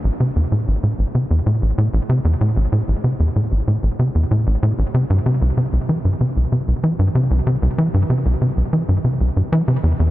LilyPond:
\new Staff \with { instrumentName = "Analog synth bass" } { \clef bass \time 4/4 \key a \minor \tempo 4 = 95 a,,16 c16 e,16 a,16 a,,16 a,16 a,,16 c16 e,16 a,16 a,,16 a,16 a,,16 c16 e,16 a,16 | a,,16 a,16 a,,16 c16 e,16 a,16 a,,16 a,16 a,,16 c16 e,16 a,16 a,,16 a,16 a,,16 c16 | g,16 c16 c,16 c16 c,16 e16 g,16 c16 c,16 c16 c,16 e16 g,16 c16 c,16 c16 | c,16 e16 g,16 c16 c,16 c16 c,16 e16 g,16 c16 c,16 g,16 e16 c16 e,16 e,16 | }